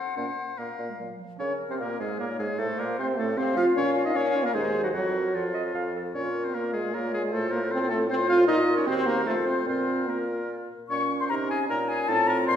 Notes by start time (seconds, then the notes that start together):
Already playing: C5 F#5
0.16 A#2 A#3 C#4 C5
0.57 A#2 A#3 A#4 F5
0.79 A#2 A#3
0.89 G#3
0.98 A#2 F#3 A#3
1.18 F3
1.39 C#3 C#4 A#4 C#5
1.69 C3 C4 C5
1.80 A#2 A#3 A#4
2.00 G#2 G#3 G#4
2.19 A#2 A#3 A#4 C#5
2.39 G#2 G#3 G#4
2.58 A2 A3 A4 C5
2.78 A#2 A#3 A#4
2.98 C3 C4 C5
3.17 A2 A3 A4
3.37 C3 C4 C5 F5
3.56 F3 F4 F5
3.76 A#2 C#4 C#5
3.96 F4
4.05 D#4 D#5
4.15 A#2 C#4 C#5
4.35 F4
4.45 A#3 A#4
4.54 D#2 G#3 D#4 G#4 C5
4.75 F#4
4.84 F#3 F#4
4.93 F2 F#3 F#4 C#5
5.14 A#4
5.34 F2 F3 F4 C#5
5.54 D#5
5.74 F2 F5
5.95 A4
6.14 A#2 C#4 F4 A#4 C#5
6.45 C4 C5
6.54 A#3 F4 A#4
6.73 G#3 G#4
6.93 A#3 F4 A#4 C#5
7.13 G#3 G#4
7.32 A2 A3 F4 A4 C5
7.51 A#3 A#4
7.71 C4 F4 A4 C5
7.90 A3 A4
8.09 C4 F4 C5
8.29 F4 F5
8.47 A#2 D#4 F4 A#4 D#5
8.76 C#4 C#5
8.86 D#2 C4 F#4 C5
9.06 A#3 A#4
9.26 F2 A3 F4 A4 C5
9.46 C4 C5
9.66 A#2 C4 F4 A#4 C5
10.08 A#3 F4 A#4
10.89 A#2 C#4 C#5 C#6
11.20 C5 C6
11.29 C3 D#4 A#4 A#5
11.49 G#4 G#5
11.69 A#2 C#4 D#4 A#4 A#5
11.88 G#4 G#5
12.08 A2 C4 F4 A4 A5
12.27 A#4 A#5
12.47 A#2 C5 C6